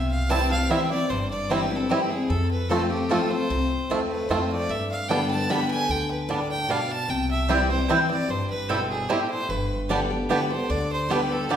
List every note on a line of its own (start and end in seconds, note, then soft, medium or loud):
0.00 0.66 C2 medium
0.00 0.66 C3 medium
0.00 0.11 E5 medium
0.11 0.31 F5 medium
0.29 0.50 E3 medium
0.29 0.50 G3 medium
0.29 0.40 G3 medium
0.29 0.40 C4 medium
0.29 0.51 C4 loud
0.29 0.40 E4 medium
0.29 0.49 E4 loud
0.29 0.50 A5 loud
0.50 0.69 C4 medium
0.50 0.69 E4 medium
0.50 0.72 F5 medium
0.69 0.90 E3 medium
0.69 0.90 G3 medium
0.69 0.80 G3 medium
0.69 0.91 C4 medium
0.69 0.80 C4 medium
0.69 0.80 E4 medium
0.69 0.90 E4 medium
0.69 0.90 E5 medium
0.90 1.10 C4 soft
0.90 1.09 E4 medium
0.90 1.11 D5 loud
1.09 1.86 G1 medium
1.09 1.86 G2 medium
1.09 1.30 C5 medium
1.31 1.52 D5 medium
1.50 1.70 E3 medium
1.50 1.70 G3 medium
1.50 1.60 G3 medium
1.50 1.71 C4 medium
1.50 1.60 C4 medium
1.50 1.60 E4 medium
1.50 1.69 E4 medium
1.50 1.64 C5 medium
1.62 1.77 B4 medium
1.70 1.90 C4 medium
1.70 1.89 E4 medium
1.76 1.91 A4 medium
1.89 2.10 E3 medium
1.89 2.10 G3 medium
1.89 2.00 G3 medium
1.89 2.11 C4 medium
1.89 2.00 C4 medium
1.89 2.09 E4 medium
1.89 2.00 E4 medium
1.89 2.12 G4 medium
2.10 2.30 C4 soft
2.10 2.29 E4 medium
2.10 2.31 G#4 medium
2.29 3.05 F2 medium
2.29 3.06 F2 medium
2.29 2.50 A4 medium
2.51 2.71 B4 medium
2.69 2.90 F3 medium
2.69 2.90 A3 medium
2.69 2.80 A3 medium
2.69 2.91 C4 loud
2.69 2.80 C4 medium
2.69 2.80 F4 medium
2.69 2.89 F4 loud
2.69 2.90 A4 medium
2.90 3.10 C4 medium
2.90 3.09 F4 medium
2.90 3.11 G4 medium
3.09 3.30 F3 medium
3.09 3.30 A3 medium
3.09 3.20 A3 medium
3.09 3.31 C4 medium
3.09 3.20 C4 medium
3.09 3.20 F4 medium
3.09 3.29 F4 medium
3.09 3.32 A4 medium
3.30 3.50 C4 soft
3.30 3.49 F4 medium
3.30 3.89 C5 loud
3.50 3.75 C2 medium
3.50 4.26 C3 medium
3.90 4.24 E2 medium
3.90 4.28 A3 medium
3.90 4.00 A3 medium
3.90 4.28 C4 medium
3.90 4.00 C4 medium
3.90 4.28 F4 loud
3.90 4.00 F4 medium
4.11 4.32 B4 medium
4.29 4.63 F2 medium
4.29 4.67 F3 medium
4.29 4.68 A3 medium
4.29 4.39 A3 medium
4.29 4.68 C4 medium
4.29 4.39 C4 medium
4.29 4.68 F4 medium
4.29 4.40 F4 medium
4.29 4.51 C5 medium
4.52 4.72 D5 loud
4.69 5.45 G2 medium
4.69 4.91 E5 loud
4.91 5.10 F5 medium
5.09 5.47 D3 medium
5.09 5.48 G3 medium
5.09 5.19 G3 medium
5.09 5.48 B3 loud
5.09 5.19 B3 medium
5.09 5.19 D4 medium
5.09 5.48 G4 loud
5.09 5.30 G5 medium
5.31 5.52 A5 loud
5.49 5.87 D3 medium
5.49 5.87 G3 medium
5.49 5.59 G3 medium
5.49 5.88 B3 medium
5.49 5.59 B3 medium
5.49 5.59 D4 medium
5.49 5.88 G4 loud
5.49 5.70 B5 loud
5.71 5.92 G#5 loud
5.89 6.65 D2 medium
5.89 6.65 D3 medium
5.89 6.10 G5 loud
6.11 6.32 B4 medium
6.29 6.67 A2 medium
6.29 6.39 G3 medium
6.29 6.39 B3 medium
6.29 6.39 D4 medium
6.29 6.51 D5 medium
6.51 6.73 G5 loud
6.68 7.07 B2 medium
6.68 6.79 G3 medium
6.68 6.79 B3 medium
6.68 6.79 D4 medium
6.68 6.93 F5 medium
6.92 7.11 A5 loud
7.08 7.85 C2 medium
7.08 7.85 C3 medium
7.08 7.30 G5 loud
7.31 7.52 E5 medium
7.48 7.69 E3 medium
7.48 7.69 G3 medium
7.48 7.58 G3 medium
7.48 7.58 C4 medium
7.48 7.70 C4 loud
7.48 7.59 C4 medium
7.48 7.58 E4 medium
7.48 7.59 E4 medium
7.48 7.69 E4 medium
7.48 7.58 C5 loud
7.48 7.70 D5 medium
7.48 7.59 G5 medium
7.70 7.89 C4 medium
7.70 7.88 E4 medium
7.70 7.91 C5 medium
7.88 8.09 E3 medium
7.88 7.99 G3 medium
7.88 8.10 G3 medium
7.88 7.98 C4 medium
7.88 7.99 C4 medium
7.88 8.10 C4 medium
7.88 7.98 E4 medium
7.88 7.99 E4 medium
7.88 8.09 E4 medium
7.88 8.10 B4 medium
7.88 7.99 C5 medium
7.88 7.99 G5 loud
8.10 8.29 C4 soft
8.10 8.28 E4 medium
8.10 8.31 D5 loud
8.29 9.05 G1 medium
8.29 9.05 G2 medium
8.29 8.50 C5 medium
8.50 8.71 B4 medium
8.69 9.07 B2 medium
8.69 8.79 G3 medium
8.69 8.78 C4 medium
8.69 8.79 C4 medium
8.69 8.79 E4 medium
8.69 8.89 A4 medium
8.69 8.79 C5 loud
8.69 8.79 G5 loud
8.90 9.10 G#4 medium
9.09 9.48 A2 medium
9.09 9.19 G3 medium
9.09 9.18 C4 medium
9.09 9.19 C4 medium
9.09 9.19 E4 medium
9.09 9.29 G4 medium
9.09 9.19 C5 loud
9.09 9.19 G5 medium
9.30 9.51 C5 loud
9.49 10.25 G1 loud
9.49 10.26 G2 medium
9.49 9.89 B4 medium
9.89 10.09 D3 medium
9.89 10.10 G3 medium
9.89 9.99 G3 medium
9.89 9.99 B3 medium
9.89 10.10 B3 loud
9.89 9.99 B3 medium
9.89 9.99 D4 medium
9.89 9.99 G4 loud
9.89 10.09 G4 loud
9.89 9.99 D5 medium
9.89 9.99 G5 medium
10.10 10.30 B3 soft
10.10 10.28 G4 medium
10.29 10.50 D3 medium
10.29 10.50 G3 medium
10.29 10.39 G3 medium
10.29 10.39 B3 medium
10.29 10.50 B3 medium
10.29 10.39 D4 medium
10.29 10.39 G4 medium
10.29 10.49 G4 medium
10.29 10.49 B4 medium
10.29 10.39 D5 medium
10.29 10.39 G5 medium
10.50 10.70 B3 soft
10.50 10.69 G4 medium
10.50 10.72 C5 medium
10.70 11.46 D2 medium
10.70 11.07 D3 medium
10.70 10.91 D5 loud
10.92 11.13 C5 loud
11.09 11.47 D3 medium
11.09 11.48 G3 medium
11.09 11.19 G3 medium
11.09 11.19 B3 medium
11.09 11.48 B3 medium
11.09 11.20 B3 medium
11.09 11.20 D4 medium
11.09 11.19 G4 medium
11.09 11.49 G4 loud
11.09 11.33 B4 medium
11.09 11.20 D5 medium
11.09 11.20 G5 medium
11.32 11.52 A4 medium
11.49 11.56 D3 medium
11.49 11.56 G3 medium
11.49 11.56 B3 medium
11.49 11.56 D4 medium
11.49 11.56 G4 medium
11.49 11.56 B4 medium
11.49 11.56 D5 medium
11.49 11.56 G5 medium